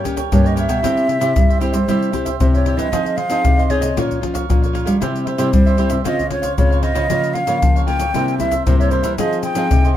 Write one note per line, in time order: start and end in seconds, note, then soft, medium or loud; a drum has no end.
0.00 0.29 G3 medium
0.00 0.17 G4 soft
0.05 0.21 A#3 medium
0.05 0.21 C#4 medium
0.05 0.21 G4 medium
0.05 0.17 A#4 soft
0.05 0.16 C#5 soft
0.05 0.15 G5 medium
0.05 pandeiro medium
0.05 shaker medium
0.05 surdo soft
0.16 0.44 A#4 soft
0.16 0.43 C#5 soft
0.16 0.43 G5 soft
0.16 pandeiro medium
0.16 shaker medium
0.16 surdo soft
0.32 0.65 G2 medium
0.32 0.82 G3 medium
0.32 0.66 A#3 medium
0.32 0.66 C#4 soft
0.32 0.66 G4 medium
0.32 0.48 C#5 medium
0.32 pandeiro medium
0.32 shaker medium
0.32 surdo medium
0.44 0.56 A#4 soft
0.44 0.57 C#5 soft
0.44 0.58 D#5 medium
0.44 0.57 G5 soft
0.44 pandeiro soft
0.44 shaker soft
0.44 surdo soft
0.56 0.67 G4 medium
0.56 0.68 A#4 medium
0.56 0.68 C#5 medium
0.56 1.58 E5 medium
0.56 0.69 G5 medium
0.56 pandeiro medium
0.56 shaker medium
0.68 0.81 B2 medium
0.68 0.79 G4 medium
0.68 0.79 A#4 medium
0.68 0.79 C#5 medium
0.68 0.80 G5 medium
0.68 pandeiro medium
0.68 shaker medium
0.68 surdo soft
0.82 1.34 C3 medium
0.82 1.06 C3 medium
0.82 1.19 C4 medium
0.82 1.07 E4 medium
0.82 1.19 E4 medium
0.82 1.08 G4 medium
0.82 1.20 G4 medium
0.82 1.09 C5 medium
0.82 1.09 E5 medium
0.82 pandeiro medium
0.82 shaker medium
0.82 surdo medium
0.97 pandeiro soft
0.97 shaker soft
1.08 1.19 E4 soft
1.08 1.19 G4 soft
1.08 1.20 C5 soft
1.08 1.20 E5 soft
1.08 pandeiro soft
1.20 1.33 C3 medium
1.20 1.57 C4 soft
1.20 1.31 E4 medium
1.20 1.58 E4 medium
1.20 1.31 G4 medium
1.20 1.58 G4 medium
1.20 1.31 C5 medium
1.20 1.31 E5 medium
1.20 pandeiro medium
1.20 shaker medium
1.36 1.86 G2 medium
1.36 1.69 G3 medium
1.36 pandeiro medium
1.36 shaker medium
1.36 surdo loud
1.49 1.60 G4 soft
1.49 1.61 C5 soft
1.49 1.61 E5 medium
1.49 pandeiro soft
1.49 shaker soft
1.60 1.77 C4 soft
1.60 1.73 E4 medium
1.60 1.78 E4 soft
1.60 1.74 G4 medium
1.60 1.78 G4 medium
1.60 2.36 C5 medium
1.60 1.73 C5 medium
1.60 1.72 E5 medium
1.60 pandeiro medium
1.60 shaker medium
1.73 1.85 G3 medium
1.73 1.87 G4 soft
1.73 1.87 C5 soft
1.73 1.86 E5 soft
1.73 pandeiro medium
1.73 shaker medium
1.88 2.38 C3 medium
1.88 2.10 G3 medium
1.88 2.11 C4 soft
1.88 2.11 E4 medium
1.88 2.12 G4 medium
1.88 2.11 G4 medium
1.88 2.13 C5 medium
1.88 2.13 E5 medium
1.88 pandeiro medium
1.88 shaker medium
1.88 surdo medium
2.02 pandeiro soft
2.02 shaker soft
2.12 2.30 C4 medium
2.12 2.25 E4 soft
2.12 2.30 E4 soft
2.12 2.26 G4 soft
2.12 2.30 G4 medium
2.12 2.25 C5 medium
2.12 2.24 E5 medium
2.12 pandeiro medium
2.12 shaker medium
2.12 surdo soft
2.25 2.53 G4 soft
2.25 2.52 C5 soft
2.25 2.51 E5 soft
2.25 pandeiro medium
2.25 shaker medium
2.25 surdo soft
2.40 2.90 G2 soft
2.40 2.74 C3 medium
2.40 2.89 C4 soft
2.40 2.89 E4 soft
2.40 2.89 G4 soft
2.40 2.47 C5 medium
2.40 pandeiro medium
2.40 shaker medium
2.40 surdo medium
2.54 2.65 G4 soft
2.54 2.66 C5 soft
2.54 2.79 C#5 medium
2.54 2.66 E5 soft
2.54 pandeiro soft
2.54 shaker soft
2.54 surdo soft
2.65 2.76 E4 medium
2.65 2.77 G4 medium
2.65 2.77 C5 medium
2.65 2.78 E5 medium
2.65 pandeiro medium
2.77 2.89 E3 medium
2.77 2.87 E4 medium
2.77 2.88 G4 medium
2.77 2.88 C5 medium
2.77 3.18 D#5 medium
2.77 2.88 E5 medium
2.77 pandeiro medium
2.77 shaker medium
2.77 surdo soft
2.92 3.15 F3 medium
2.92 3.43 F3 medium
2.92 3.17 C4 medium
2.92 3.18 D#4 medium
2.92 3.16 F4 medium
2.92 3.17 G#4 medium
2.92 3.18 G#4 medium
2.92 3.17 C5 medium
2.92 3.18 D#5 medium
2.92 pandeiro medium
2.92 shaker medium
2.92 surdo medium
3.06 pandeiro soft
3.06 shaker soft
3.17 3.29 F4 soft
3.17 3.29 G#4 soft
3.17 3.30 C5 soft
3.17 3.30 D#5 soft
3.17 3.72 F5 loud
3.17 pandeiro medium
3.30 3.42 F3 medium
3.30 3.66 C4 medium
3.30 3.66 D#4 medium
3.30 3.40 F4 medium
3.30 3.40 G#4 medium
3.30 3.66 G#4 medium
3.30 3.41 C5 medium
3.30 3.41 D#5 medium
3.30 pandeiro medium
3.30 shaker medium
3.44 3.78 C3 medium
3.44 3.95 C3 medium
3.44 pandeiro medium
3.44 shaker medium
3.44 surdo loud
3.58 3.70 G#4 soft
3.58 3.70 C5 soft
3.58 3.70 D#5 soft
3.58 pandeiro soft
3.58 shaker soft
3.70 3.87 C4 medium
3.70 3.88 D#4 soft
3.70 3.83 F4 medium
3.70 3.83 G#4 medium
3.70 3.88 G#4 medium
3.70 3.81 C5 medium
3.70 4.23 C#5 medium
3.70 3.80 D#5 medium
3.70 pandeiro medium
3.81 3.94 C3 medium
3.81 3.96 G#4 soft
3.81 3.95 C5 soft
3.81 3.95 D#5 soft
3.81 pandeiro medium
3.81 shaker medium
3.96 4.47 A#2 soft
3.96 4.19 A#2 medium
3.96 4.19 F3 medium
3.96 4.19 C#4 medium
3.96 4.20 F4 medium
3.96 4.19 F4 medium
3.96 4.21 A#4 medium
3.96 4.22 C#5 medium
3.96 4.23 F5 medium
3.96 pandeiro medium
3.96 shaker medium
3.96 surdo medium
4.11 pandeiro soft
4.11 shaker soft
4.11 surdo soft
4.21 4.45 F3 soft
4.21 4.45 C#4 medium
4.21 4.34 F4 soft
4.21 4.45 F4 medium
4.21 4.35 A#4 soft
4.21 4.34 C#5 soft
4.21 4.33 F5 soft
4.21 pandeiro medium
4.21 surdo soft
4.34 4.61 A#4 soft
4.34 4.61 C#5 soft
4.34 4.60 F5 soft
4.34 pandeiro medium
4.34 shaker medium
4.34 surdo soft
4.49 4.83 A#2 medium
4.49 4.99 F3 medium
4.49 4.98 C#4 soft
4.49 4.98 F4 medium
4.49 pandeiro medium
4.49 shaker medium
4.49 surdo medium
4.62 4.73 A#4 soft
4.62 4.74 C#5 soft
4.62 4.74 F5 soft
4.62 pandeiro soft
4.62 shaker soft
4.62 surdo soft
4.73 4.84 F4 medium
4.73 4.85 A#4 medium
4.73 4.85 C#5 medium
4.73 4.85 F5 medium
4.73 pandeiro medium
4.85 4.98 G3 medium
4.85 4.96 F4 medium
4.85 4.96 A#4 medium
4.85 4.96 C#5 medium
4.85 4.97 F5 medium
4.85 pandeiro medium
4.85 shaker medium
4.85 surdo soft
5.00 5.24 C3 medium
5.00 5.51 C3 medium
5.00 5.36 G3 medium
5.00 5.37 C4 soft
5.00 5.24 E4 medium
5.00 5.37 E4 medium
5.00 5.25 G4 medium
5.00 5.26 C5 medium
5.00 5.27 E5 medium
5.00 pandeiro medium
5.00 shaker medium
5.00 surdo medium
5.16 pandeiro soft
5.16 shaker soft
5.26 5.37 E4 soft
5.26 5.37 G4 soft
5.26 6.02 C5 medium
5.26 5.38 C5 soft
5.26 5.38 E5 medium
5.26 pandeiro medium
5.38 5.50 C3 medium
5.38 5.75 G3 medium
5.38 5.75 C4 medium
5.38 5.48 E4 medium
5.38 5.75 E4 medium
5.38 5.49 G4 medium
5.38 5.49 C5 medium
5.38 5.49 E5 medium
5.38 pandeiro medium
5.38 shaker medium
5.53 6.03 G2 medium
5.53 5.87 G3 medium
5.53 pandeiro medium
5.53 shaker medium
5.53 surdo loud
5.66 5.77 G4 soft
5.66 5.78 C5 soft
5.66 5.78 E5 soft
5.66 pandeiro soft
5.66 shaker soft
5.77 5.96 G3 medium
5.77 5.96 C4 soft
5.77 5.90 E4 medium
5.77 5.96 E4 medium
5.77 5.91 G4 medium
5.77 5.90 C5 medium
5.77 5.89 E5 medium
5.77 pandeiro soft
5.90 6.03 C3 medium
5.90 6.05 G4 soft
5.90 6.04 C5 soft
5.90 6.03 E5 soft
5.90 pandeiro medium
5.90 shaker medium
6.04 6.28 C#3 medium
6.04 6.55 C#3 medium
6.04 6.21 G#3 medium
6.04 6.22 C4 medium
6.04 6.29 F4 medium
6.04 6.22 F4 medium
6.04 6.30 C5 medium
6.04 6.30 C#5 medium
6.04 6.30 D#5 medium
6.04 6.31 F5 medium
6.04 pandeiro medium
6.04 shaker medium
6.04 surdo medium
6.19 pandeiro soft
6.19 shaker soft
6.19 surdo soft
6.30 6.47 G#3 medium
6.30 6.47 C4 medium
6.30 6.43 F4 soft
6.30 6.47 F4 medium
6.30 6.43 C5 soft
6.30 6.56 C#5 medium
6.30 6.42 C#5 medium
6.30 6.41 F5 medium
6.30 pandeiro medium
6.30 surdo soft
6.42 6.70 C5 soft
6.42 6.69 C#5 soft
6.42 6.68 F5 soft
6.42 pandeiro medium
6.42 shaker medium
6.42 surdo soft
6.57 7.07 G#2 medium
6.57 6.91 C#3 medium
6.57 6.92 G#3 soft
6.57 6.92 C4 medium
6.57 6.92 F4 medium
6.57 6.81 C#5 medium
6.57 pandeiro medium
6.57 shaker medium
6.57 surdo medium
6.71 6.82 C5 soft
6.71 6.82 C#5 soft
6.71 6.83 F5 soft
6.71 pandeiro soft
6.71 shaker soft
6.71 surdo soft
6.82 6.93 F4 medium
6.82 6.94 C5 medium
6.82 6.94 C#5 medium
6.82 7.35 D#5 medium
6.82 6.95 F5 medium
6.82 pandeiro medium
6.94 7.07 C#3 medium
6.94 7.05 F4 medium
6.94 7.05 C5 medium
6.94 7.05 C#5 medium
6.94 7.06 F5 medium
6.94 pandeiro medium
6.94 shaker medium
6.94 surdo soft
7.09 7.59 C#3 medium
7.09 7.33 C#3 medium
7.09 7.45 F3 medium
7.09 7.45 A#3 soft
7.09 7.33 F4 medium
7.09 7.45 F4 medium
7.09 7.34 A#4 medium
7.09 7.35 C#5 medium
7.09 7.35 F5 medium
7.09 pandeiro medium
7.09 shaker medium
7.09 surdo medium
7.24 pandeiro soft
7.24 shaker soft
7.34 7.46 F4 soft
7.34 7.47 A#4 soft
7.34 7.47 C#5 medium
7.34 7.85 F5 loud
7.34 7.47 F5 soft
7.34 pandeiro medium
7.47 7.60 C#3 medium
7.47 7.83 F3 medium
7.47 7.83 A#3 medium
7.47 7.57 F4 medium
7.47 7.84 F4 medium
7.47 7.57 A#4 medium
7.47 7.58 C#5 medium
7.47 7.58 F5 medium
7.47 pandeiro medium
7.47 shaker medium
7.62 8.12 C#3 medium
7.62 7.96 F3 medium
7.62 pandeiro medium
7.62 shaker medium
7.62 surdo medium
7.76 7.87 A#4 soft
7.76 7.87 C#5 soft
7.76 7.87 F5 medium
7.76 pandeiro soft
7.76 shaker soft
7.85 8.04 F3 medium
7.85 8.04 A#3 soft
7.85 8.00 F4 medium
7.85 8.05 F4 medium
7.85 8.00 A#4 medium
7.85 7.99 C#5 medium
7.85 7.98 F5 medium
7.85 8.35 G5 loud
7.85 pandeiro soft
7.99 8.12 C#3 medium
7.99 8.13 A#4 soft
7.99 8.13 C#5 soft
7.99 8.12 F5 medium
7.99 pandeiro medium
7.99 shaker medium
8.14 8.64 C3 medium
8.14 8.37 C3 medium
8.14 8.36 G3 medium
8.14 8.36 A#3 medium
8.14 8.36 E4 medium
8.14 8.38 E4 medium
8.14 8.39 A#4 medium
8.14 8.40 C5 medium
8.14 8.41 E5 medium
8.14 pandeiro medium
8.14 shaker medium
8.14 surdo medium
8.28 pandeiro soft
8.28 shaker soft
8.38 8.55 G3 medium
8.38 8.55 A#3 medium
8.38 8.52 E4 soft
8.38 8.55 E4 medium
8.38 8.52 A#4 soft
8.38 8.52 C5 medium
8.38 8.63 E5 medium
8.38 8.51 E5 medium
8.38 pandeiro medium
8.38 shaker medium
8.38 surdo soft
8.52 8.79 A#4 soft
8.52 8.78 C5 soft
8.52 8.78 E5 soft
8.52 pandeiro medium
8.52 shaker medium
8.52 surdo soft
8.66 9.16 G2 medium
8.66 9.00 C3 medium
8.66 9.14 G3 soft
8.66 9.14 A#3 medium
8.66 9.15 E4 medium
8.66 8.78 C5 medium
8.66 pandeiro medium
8.66 shaker medium
8.66 surdo loud
8.79 8.90 A#4 soft
8.79 8.91 C5 soft
8.79 8.92 C#5 medium
8.79 8.92 E5 soft
8.79 pandeiro soft
8.79 shaker soft
8.79 surdo soft
8.91 9.02 E4 medium
8.91 9.02 A#4 medium
8.91 9.17 C5 medium
8.91 9.03 C5 medium
8.91 9.04 E5 medium
8.91 pandeiro medium
8.91 shaker medium
9.03 9.16 E3 medium
9.03 9.13 E4 medium
9.03 9.14 A#4 medium
9.03 9.14 C5 medium
9.03 9.14 E5 medium
9.03 pandeiro medium
9.03 shaker medium
9.03 surdo soft
9.17 9.68 F3 medium
9.17 9.41 F3 medium
9.17 9.54 C4 soft
9.17 9.54 D#4 soft
9.17 9.42 F4 medium
9.17 9.43 G#4 medium
9.17 9.54 G#4 medium
9.17 9.44 C5 medium
9.17 9.42 D#5 medium
9.17 9.45 D#5 medium
9.17 pandeiro medium
9.17 shaker medium
9.17 surdo medium
9.33 pandeiro soft
9.33 shaker soft
9.43 9.55 F4 soft
9.43 9.55 G#4 soft
9.43 9.55 C5 soft
9.43 9.56 D#5 medium
9.43 9.96 G5 loud
9.43 pandeiro medium
9.43 shaker medium
9.55 9.68 F3 medium
9.55 9.92 C4 medium
9.55 9.92 D#4 medium
9.55 9.66 F4 medium
9.55 9.66 G#4 medium
9.55 9.92 G#4 medium
9.55 9.66 C5 medium
9.55 9.66 D#5 medium
9.55 pandeiro medium
9.55 shaker medium
9.71 9.97 C3 medium
9.71 pandeiro medium
9.71 shaker medium
9.71 surdo loud
9.84 9.96 G#4 soft
9.84 9.96 C5 soft
9.84 9.96 D#5 soft
9.84 pandeiro soft
9.84 shaker soft